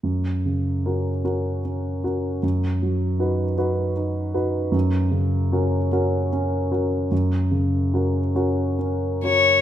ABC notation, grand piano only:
X:1
M:6/8
L:1/8
Q:3/8=50
K:F#
V:1 name="Grand piano"
F,, C, [CFA] [CFA] C [CFA] | F,, F, [DFB] [DFB] D [DFB] | F,, C, [CFA] [CFA] C [CFA] | F,, C, [CFA] [CFA] C [CFA] |]